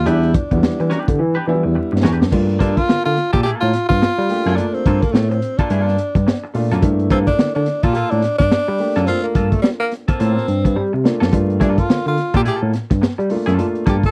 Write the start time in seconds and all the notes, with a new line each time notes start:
0.06 E2 G3 B3 D4 E4 G4 B4, closed hi-hat
0.23 closed hi-hat
0.34 D4, kick, closed hi-hat
0.51 E2 F#3 B3 D4 E4, muted clean electric guitar stroke, kick, closed hi-hat
0.58 G3
0.63 E3, snare
0.80 E3, muted clean electric guitar stroke, closed hi-hat
0.90 D4 G4 B4, snare, closed hi-hat
1.07 D3, muted clean electric guitar stroke, kick, closed hi-hat
1.18 E3, muted clean electric guitar stroke
1.35 D4 G4 B4
1.47 E3 F3 B3 D4 E4, muted clean electric guitar stroke
1.54 G3
1.63 E2, muted clean electric guitar stroke
1.75 muted clean electric guitar stroke
1.92 G2, muted clean electric guitar stroke
2.03 E2 D4 G4 B4, snare
2.20 F#2, muted clean electric guitar stroke, snare
2.31 G2 A3 A#3 D4 F4, kick, crash
2.49 closed hi-hat
2.59 G2 A#3 D4 F4 A4, kick, closed hi-hat
2.77 F4, kick, closed hi-hat
2.88 D3, muted clean electric guitar stroke, snare
3.04 D3 F4, muted clean electric guitar stroke, closed hi-hat
3.17 snare, closed hi-hat
3.33 A#2 A#3 F4 G4 A4, kick, closed hi-hat
3.43 A2 A3 E4 G4 G#4, closed hi-hat
3.55 A#3 F4 A4
3.60 A2 F4, closed hi-hat
3.73 muted clean electric guitar stroke, snare, closed hi-hat
3.89 G2 F4, muted clean electric guitar stroke, kick, snare, closed hi-hat
4.01 muted clean electric guitar stroke, snare
4.18 G3, muted clean electric guitar stroke, closed hi-hat
4.29 A3 A#3 D4 G4, open hi-hat
4.46 F#2 A#3 F4 A4, snare, closed hi-hat
4.56 A3 A#3 D4 F4, closed hi-hat
4.74 C4, closed hi-hat
4.86 G2 A#3 F4 A4, kick, closed hi-hat
5.02 A#3, kick, closed hi-hat
5.12 A2 A3, muted clean electric guitar stroke, snare
5.29 C4, muted clean electric guitar stroke, closed hi-hat
5.42 closed hi-hat
5.58 A#3 D4 F4 A4, kick, closed hi-hat
5.70 G2 A3 E4 G#4, closed hi-hat
5.81 A#3 F4 A4
5.88 snare
5.98 muted clean electric guitar stroke, closed hi-hat
6.15 G2, muted clean electric guitar stroke, kick, closed hi-hat
6.27 muted clean electric guitar stroke, snare
6.43 muted clean electric guitar stroke
6.54 A#2 A3 A#3 D4 F4, open hi-hat
6.71 F#2 A#3 F4 A4, snare, closed hi-hat
6.81 G2 A3 A#3 D4 E4, kick, closed hi-hat
6.99 closed hi-hat
7.10 G2 A#3 C4 F4 A4, kick, closed hi-hat
7.27 D4, kick, closed hi-hat
7.38 D3, muted clean electric guitar stroke, snare
7.55 D3 D4, muted clean electric guitar stroke, closed hi-hat
7.66 snare, closed hi-hat
7.83 A#2 A#3 F4 A4, kick, closed hi-hat
7.93 A2 A#3 F4 G4 A4, closed hi-hat
8.11 A2 D4, closed hi-hat
8.22 muted clean electric guitar stroke, snare, closed hi-hat
8.38 G2 D4, muted clean electric guitar stroke, kick, snare, closed hi-hat
8.51 muted clean electric guitar stroke, snare
8.68 G3, muted clean electric guitar stroke
8.78 A3 A#3 D4 G4, open hi-hat
8.95 F#2 A#3 F4 A4, snare, closed hi-hat
9.06 A3 A#3 C4 D4 F4, closed hi-hat
9.23 A#3, closed hi-hat
9.35 G2 A#3 F4 A4, kick, closed hi-hat
9.51 A3, kick, closed hi-hat
9.62 G3, muted clean electric guitar stroke, snare
9.80 A#3, muted clean electric guitar stroke, closed hi-hat
9.91 snare, closed hi-hat
10.07 A#3 C4 F4 A4, kick, closed hi-hat
10.19 A2 A#3 F4 A4, closed hi-hat
10.38 snare
10.48 G2, muted clean electric guitar stroke, closed hi-hat
10.65 G2, muted clean electric guitar stroke, kick, closed hi-hat
10.76 G3, muted clean electric guitar stroke
10.93 C3, muted clean electric guitar stroke
11.04 A3 A#3 D4 F4, snare
11.20 F#2 A#3 F4 A4, snare
11.32 G2 A3 A#3 D4 F4, kick, closed hi-hat
11.50 closed hi-hat
11.60 G2 A#3 D4 F4 A4, kick, closed hi-hat
11.78 F4, kick, closed hi-hat
11.89 D3, muted clean electric guitar stroke, snare
12.06 D3 F4, muted clean electric guitar stroke, closed hi-hat
12.18 snare, closed hi-hat
12.34 A#2 A#3 F4 G4 A4, kick, closed hi-hat
12.44 A2 A3 E4 G4 G#4, closed hi-hat
12.55 A#3 F4 A4
12.62 A2
12.74 muted clean electric guitar stroke, snare, closed hi-hat
12.90 G2, muted clean electric guitar stroke, kick, snare, closed hi-hat
13.01 muted clean electric guitar stroke, snare
13.18 G3, muted clean electric guitar stroke, closed hi-hat
13.30 A3 A#3 D4 F4, open hi-hat
13.46 F#2 A#3 F4 A4, snare, closed hi-hat
13.58 A3 A#3 D4 F4, closed hi-hat
13.75 closed hi-hat
13.86 G2 A#3 F4 G4 A4, kick, closed hi-hat
14.03 A4, kick, closed hi-hat